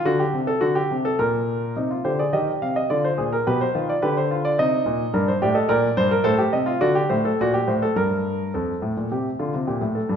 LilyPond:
<<
  \new Staff \with { instrumentName = "Grand piano" } { \time 3/4 \key c \minor \tempo 4 = 106 << { r2. | r8 c''16 d''16 ees''8 f''16 ees''16 d''16 c''8 bes'16 | b'16 c''8 d''16 b'16 c''8 d''16 ees''4 | bes'16 c''16 d''16 ees''16 d''4 c''8 ees''8 |
d''8 c''8 d''8 c''8 bes'4 | r2. | } \\ { fis'16 g'8 a'16 fis'16 g'8 a'16 bes'4 | ees'16 f'16 g'16 aes'16 g'4 f'8 aes'8 | g'8 f'8 g'8 f'8 ees'4 | d'8 g'16 a'16 bes'8 c''16 bes'16 a'16 g'8 f'16 |
fis'16 g'8 a'16 fis'16 g'8 a'16 r4 | a'4 g'8 f'8 g'8 a'8 | } >> }
  \new Staff \with { instrumentName = "Grand piano" } { \clef bass \time 3/4 \key c \minor d8 c8 d8 c8 bes,4 | c8 d8 ees8 c8 d8 bes,8 | b,8 ees8 d4 c8 bes,8 | g,8 a,8 bes,8 g,8 a,8 c8 |
d8 a,8 bes,8 a,8 g,4 | f,8 a,16 bes,16 c8 d16 c16 bes,16 a,8 g,16 | }
>>